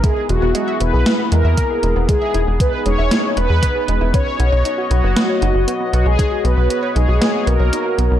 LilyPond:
<<
  \new Staff \with { instrumentName = "Analog polysynth" } { \time 4/4 \key b \major \tempo 4 = 117 gis'8 fis'8 fis'8 b'4 ais'4. | gis'4 b'8 cis''4 b'4. | cis''8 cis''4 fis'2 fis'16 gis'16~ | gis'8 b'8 b'8 gis'8 gis'8 ais'4. | }
  \new Staff \with { instrumentName = "Analog synth pad" } { \time 4/4 \key b \major << { <b gis'>1~ | <b gis'>1 | <b fis' dis''>1~ | <b fis' dis''>1 | } \\ { e'1 | dis'1 | cis''1 | cis''1 | } >> }
  \new Staff \with { instrumentName = "Synth arpeggio sound" } { \time 4/4 \key b \major e'16 gis'16 gis16 b16 gis16 e''16 e'16 gis'16 gis16 b16 gis16 e''16 e'16 gis'16 gis16 b16 | gis16 e''16 e'16 gis'16 gis16 b16 gis16 e''16 e'16 gis'16 b'16 gis16 b'16 gis'16 gis16 e'16 | b16 b16 b16 cis''16 dis'16 fis'16 b16 b16 b16 cis''16 dis'16 fis'16 b16 b16 b16 cis''16 | dis'16 fis'16 b16 b16 b16 cis''16 dis'16 fis'16 b16 b16 b16 cis''16 dis'16 fis'16 b16 b16 | }
  \new Staff \with { instrumentName = "Analog synth bass" } { \clef bass \time 4/4 \key b \major r8 e,,16 e,,16 r8 e,,16 b,,16 r8 e,16 e,16 r8 e,,16 e,,16 | r8 e,,16 e,,16 r8 e,,16 e,,16 r8 e,,16 e,16 r8 e,,16 e,,16 | r8 b,,16 b,,16 r8 b,,16 fis,,16 r8 fis,,16 fis,,16 r8 b,,16 b,,16 | r8 b,,16 b,,16 r8 b,,16 b,,16 r8 b,,16 b,,16 r8 b,,16 b,,16 | }
  \new DrumStaff \with { instrumentName = "Drums" } \drummode { \time 4/4 <hh bd>8 hh8 hh8 hh8 <hh sn>8 hh8 <hh bd>8 hh8 | <hh bd>8 hh8 <hh bd>8 hh8 <hh sn>8 hh8 <hh bd>8 hh8 | <hh bd>8 hh8 hh8 hh8 <hh sn>8 hh8 hh8 hh8 | <hh bd>8 hh8 hh8 hh8 <hh sn>8 hh8 hh8 hh8 | }
>>